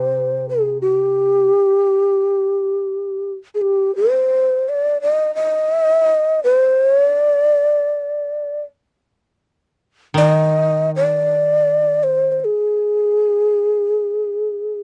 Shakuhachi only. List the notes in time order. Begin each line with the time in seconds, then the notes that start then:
Already playing: C5
0.49 G#4
0.81 G4
3.55 G#4
3.62 G4
3.96 C5
4.69 D5
5.02 D#5
5.35 D#5
6.44 C5
6.83 C#5
7.08 D5
10.18 D#5
10.96 D5
12.03 C5
12.32 C5
12.40 C5
12.45 G#4